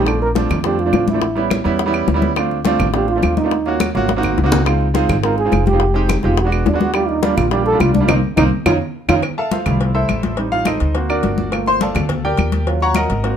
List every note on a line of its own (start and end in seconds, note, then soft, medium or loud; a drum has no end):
0.00 0.45 A#1 loud
0.00 0.08 D#4 medium
0.06 0.27 F3 medium
0.06 0.27 A3 medium
0.06 0.28 C4 medium
0.06 0.28 D4 medium
0.06 0.21 A4 medium
0.06 high bongo medium
0.06 high conga soft
0.06 claves medium
0.22 0.31 A#4 loud
0.22 high conga soft
0.35 0.56 F3 medium
0.35 0.56 A3 medium
0.35 0.56 C4 medium
0.35 0.57 D4 medium
0.35 high bongo medium
0.35 high conga medium
0.49 0.91 F2 medium
0.49 high bongo soft
0.49 high conga soft
0.49 low conga medium
0.49 claves medium
0.64 0.80 F3 medium
0.64 0.80 A3 medium
0.64 0.80 C4 medium
0.64 0.81 D4 medium
0.64 0.81 G4 medium
0.64 high bongo medium
0.64 high conga soft
0.79 1.08 F4 loud
0.79 high bongo soft
0.79 high conga soft
0.86 1.06 F3 medium
0.86 1.06 A3 medium
0.86 1.06 C4 medium
0.86 1.07 D4 medium
0.93 1.59 A1 medium
0.93 high bongo soft
0.93 low bongo medium
0.93 high conga medium
0.93 claves medium
1.08 1.48 E4 medium
1.08 high bongo soft
1.08 high conga medium
1.13 1.21 F3 medium
1.13 1.22 A3 medium
1.13 1.22 C4 medium
1.13 1.22 D4 medium
1.22 high bongo medium
1.22 high conga soft
1.35 1.56 G3 medium
1.35 1.57 B3 medium
1.35 1.57 C#4 medium
1.35 1.57 E4 medium
1.35 high conga soft
1.50 high bongo medium
1.50 high conga medium
1.50 claves medium
1.64 2.05 E2 medium
1.64 1.80 G3 medium
1.64 1.80 B3 medium
1.64 1.80 C#4 medium
1.64 1.81 E4 loud
1.64 high bongo soft
1.79 high bongo medium
1.79 high conga soft
1.86 2.06 G3 medium
1.86 2.07 B3 medium
1.86 2.07 C#4 medium
1.86 2.07 E4 loud
1.93 high bongo soft
1.93 high conga soft
1.93 claves medium
2.08 2.74 D2 medium
2.08 high bongo soft
2.08 low bongo medium
2.08 high conga medium
2.14 2.30 G3 medium
2.14 2.30 B3 medium
2.14 2.31 C#4 medium
2.14 2.31 E4 loud
2.22 high bongo soft
2.22 high conga medium
2.36 2.57 A3 medium
2.36 2.57 C4 medium
2.36 2.57 D4 medium
2.36 2.58 F4 medium
2.36 high bongo medium
2.36 high conga soft
2.36 claves medium
2.51 high conga soft
2.65 2.85 A3 loud
2.65 2.86 C4 medium
2.65 2.86 D4 medium
2.65 2.86 F4 loud
2.65 high bongo medium
2.65 high conga medium
2.79 3.20 A1 medium
2.79 high bongo soft
2.79 high conga soft
2.79 low conga medium
2.79 claves medium
2.94 3.09 A3 medium
2.94 3.09 C4 medium
2.94 3.10 D4 medium
2.94 3.10 F4 medium
2.94 3.08 G4 medium
2.94 high bongo medium
2.94 high conga soft
3.08 3.36 F4 loud
3.08 high bongo soft
3.08 high conga soft
3.16 3.36 A3 medium
3.16 3.37 C4 medium
3.16 3.37 D4 medium
3.16 3.37 F4 medium
3.23 3.89 D#2 medium
3.23 high bongo soft
3.23 low bongo medium
3.23 high conga medium
3.23 claves medium
3.37 3.77 D#4 loud
3.37 high bongo soft
3.37 high conga medium
3.44 3.51 A3 medium
3.44 3.52 C4 medium
3.44 3.52 D4 medium
3.44 3.52 F4 medium
3.51 high bongo medium
3.51 high conga soft
3.66 3.86 A#3 medium
3.66 3.86 C#4 medium
3.66 3.86 F4 medium
3.66 3.87 F#4 medium
3.66 high conga soft
3.80 high bongo medium
3.80 high conga medium
3.80 claves medium
3.95 4.35 G#1 medium
3.95 4.09 A#3 medium
3.95 4.09 C#4 medium
3.95 4.10 F4 medium
3.95 4.10 F#4 loud
3.95 high bongo soft
4.09 high bongo medium
4.09 high conga medium
4.16 4.36 A#3 medium
4.16 4.37 C4 medium
4.16 4.37 D#4 medium
4.16 4.37 F#4 loud
4.23 high bongo soft
4.23 low conga medium
4.23 claves medium
4.38 5.04 C#2 medium
4.38 high bongo soft
4.38 low bongo medium
4.44 4.59 A#3 medium
4.44 4.59 C4 medium
4.44 4.60 D#4 medium
4.44 4.60 F#4 loud
4.52 high bongo soft
4.52 low conga loud
4.65 4.86 G#3 medium
4.65 4.86 C4 medium
4.65 4.86 D#4 medium
4.65 4.86 F4 medium
4.65 high bongo medium
4.65 high conga soft
4.65 claves medium
4.81 high conga soft
4.94 5.14 G#3 loud
4.94 5.15 C4 medium
4.94 5.15 D#4 loud
4.94 5.15 F4 loud
4.94 high bongo medium
4.94 high conga medium
5.09 5.49 G#1 loud
5.09 high bongo soft
5.09 high conga soft
5.09 low conga medium
5.09 claves medium
5.23 5.38 G#3 medium
5.23 5.38 C4 medium
5.23 5.39 D#4 medium
5.23 5.39 F4 medium
5.23 5.37 A#4 loud
5.23 high bongo medium
5.23 high conga soft
5.38 5.65 G#4 loud
5.38 high bongo soft
5.38 high conga soft
5.45 5.65 G#3 medium
5.45 5.65 C4 medium
5.45 5.66 D#4 medium
5.45 5.66 F4 medium
5.52 6.18 F1 loud
5.52 high bongo soft
5.52 low bongo medium
5.52 high conga medium
5.52 claves medium
5.66 6.06 G4 loud
5.66 high bongo soft
5.66 high conga medium
5.73 5.80 G#3 medium
5.73 5.81 C4 medium
5.73 5.81 D#4 medium
5.73 5.81 F4 medium
5.80 high bongo medium
5.80 high conga soft
5.94 6.14 G#3 medium
5.94 6.15 C4 medium
5.94 6.15 D#4 medium
5.94 6.15 G4 loud
5.94 high conga soft
6.09 high bongo medium
6.09 high conga medium
6.09 claves medium
6.23 6.64 E1 loud
6.23 6.38 G#3 medium
6.23 6.38 C4 medium
6.23 6.38 D#4 medium
6.23 6.40 F4 loud
6.23 6.39 G4 medium
6.23 high bongo soft
6.37 6.52 F#4 loud
6.37 high bongo medium
6.37 high conga soft
6.44 6.65 G#3 medium
6.44 6.65 B3 medium
6.44 6.65 D4 medium
6.44 6.66 F#4 medium
6.52 6.68 B3 medium
6.52 high bongo soft
6.52 high conga soft
6.52 claves medium
6.66 7.33 D#2 medium
6.66 6.80 D4 medium
6.66 high bongo soft
6.66 low bongo medium
6.66 high conga medium
6.73 6.89 G#3 medium
6.73 6.89 B3 medium
6.73 6.89 D4 medium
6.73 6.90 F#4 medium
6.80 6.96 F#4 loud
6.80 high bongo soft
6.80 high conga medium
6.94 7.15 G3 medium
6.94 7.15 A#3 medium
6.94 7.15 D4 medium
6.94 7.16 F4 medium
6.94 7.11 G4 loud
6.94 high bongo medium
6.94 high conga soft
6.94 claves medium
7.09 7.25 D#4 loud
7.09 high conga soft
7.23 7.43 G3 medium
7.23 7.43 A#3 medium
7.23 7.38 D4 loud
7.23 7.44 D4 medium
7.23 7.44 F4 medium
7.23 high bongo medium
7.23 high conga loud
7.37 7.77 A#1 medium
7.37 7.54 F4 loud
7.37 high bongo soft
7.37 high conga soft
7.37 low conga medium
7.37 claves medium
7.51 7.67 G3 medium
7.51 7.67 A#3 medium
7.51 7.68 D4 medium
7.51 7.68 F4 medium
7.51 7.66 G4 medium
7.51 high bongo medium
7.51 high conga soft
7.66 7.82 A4 loud
7.66 high bongo soft
7.66 high conga soft
7.72 7.93 G3 medium
7.72 7.93 A#3 medium
7.72 7.94 D4 medium
7.72 7.94 F4 medium
7.80 8.07 C2 medium
7.80 7.93 F4 loud
7.80 high bongo soft
7.80 low bongo medium
7.80 high conga medium
7.80 claves medium
7.94 8.07 D4 loud
7.94 high bongo soft
7.94 high conga medium
8.01 8.09 G3 medium
8.01 8.07 A#3 medium
8.01 8.09 D4 medium
8.01 8.09 F4 medium
8.08 8.19 C2 loud
8.08 8.18 A#3 medium
8.08 8.18 C4 medium
8.08 8.15 D#4 loud
8.08 8.18 D#4 medium
8.08 low bongo loud
8.08 low conga loud
8.08 claves loud
8.37 8.48 C2 loud
8.37 8.47 A#3 loud
8.37 8.47 C4 loud
8.37 8.44 D#4 loud
8.37 8.47 D#4 loud
8.37 low bongo loud
8.37 low conga loud
8.37 claves loud
8.66 8.77 F2 medium
8.66 8.76 C#4 loud
8.66 8.76 D#4 loud
8.66 8.73 F4 medium
8.66 8.76 F4 loud
8.66 low bongo loud
8.66 low conga loud
8.66 claves loud
9.08 9.20 F2 loud
9.08 9.18 C#4 loud
9.08 9.18 D#4 loud
9.08 9.16 F4 loud
9.08 9.19 F4 loud
9.08 low bongo loud
9.08 low conga loud
9.08 claves loud
9.22 cowbell loud
9.22 high conga soft
9.22 claves medium
9.38 9.51 A4 medium
9.38 9.52 E5 medium
9.38 9.51 F5 medium
9.38 9.52 A5 medium
9.38 high conga soft
9.51 9.93 F4 medium
9.51 9.92 A4 medium
9.51 9.92 C5 medium
9.51 9.92 F5 medium
9.51 cowbell medium
9.51 high conga medium
9.66 10.06 C2 medium
9.66 10.34 G3 medium
9.66 10.35 A3 soft
9.66 9.93 E4 medium
9.66 cowbell medium
9.66 high conga soft
9.66 low conga medium
9.66 claves medium
9.81 cowbell loud
9.81 high conga soft
9.95 10.35 E4 medium
9.95 10.35 A4 medium
9.95 10.35 C5 medium
9.95 10.35 E5 medium
9.95 high conga soft
10.09 10.75 A1 medium
10.09 cowbell medium
10.09 high conga medium
10.09 claves medium
10.23 cowbell medium
10.23 high conga medium
10.37 10.79 G3 medium
10.37 10.79 C4 soft
10.37 10.65 D#4 medium
10.37 cowbell loud
10.37 high conga soft
10.52 10.66 F4 medium
10.52 10.66 F5 loud
10.52 high conga soft
10.65 10.93 D#4 medium
10.65 10.94 A4 medium
10.65 11.07 C5 medium
10.65 10.93 D#5 medium
10.65 cowbell medium
10.65 high conga medium
10.65 claves medium
10.80 11.21 D2 medium
10.80 cowbell medium
10.95 11.36 A#3 medium
10.95 11.36 C4 soft
10.95 11.08 F#4 medium
10.95 cowbell loud
10.95 high conga soft
11.09 11.50 D4 medium
11.09 11.50 F#4 medium
11.09 11.50 A#4 medium
11.09 11.49 D5 medium
11.09 high conga soft
11.09 claves medium
11.23 11.90 G1 medium
11.23 cowbell medium
11.23 high conga medium
11.38 high conga medium
11.52 11.93 A3 medium
11.52 11.93 A#3 soft
11.52 11.93 F4 medium
11.52 cowbell loud
11.52 high conga soft
11.52 claves medium
11.66 11.81 C5 loud
11.66 11.81 C6 loud
11.66 high conga soft
11.81 12.22 A4 medium
11.81 12.22 D5 medium
11.81 12.22 F5 medium
11.81 12.22 A5 medium
11.81 cowbell medium
11.81 high conga loud
11.95 12.35 D2 loud
11.95 cowbell medium
11.95 high conga soft
11.95 low conga medium
11.95 claves medium
12.09 cowbell loud
12.09 high conga soft
12.09 low conga medium
12.25 12.64 G4 medium
12.25 12.64 A#4 medium
12.25 12.64 D5 medium
12.25 12.64 G5 medium
12.25 high conga soft
12.37 13.05 D#2 medium
12.37 cowbell medium
12.37 high conga medium
12.37 claves medium
12.52 cowbell medium
12.52 high conga medium
12.67 13.08 F#3 medium
12.67 13.08 C#4 soft
12.67 13.08 F4 medium
12.67 cowbell loud
12.67 high conga soft
12.80 12.96 C#5 medium
12.80 12.95 F#5 medium
12.80 12.95 A#5 medium
12.80 12.96 C#6 loud
12.80 high conga soft
12.95 13.36 A#4 medium
12.95 13.36 D#5 medium
12.95 13.36 F#5 medium
12.95 13.36 A#5 medium
12.95 cowbell medium
12.95 high conga medium
12.95 claves medium
13.10 13.37 G#1 medium
13.10 cowbell medium
13.23 13.37 A#3 medium
13.23 13.37 C4 medium
13.23 13.37 F#4 medium
13.23 cowbell loud
13.23 high conga soft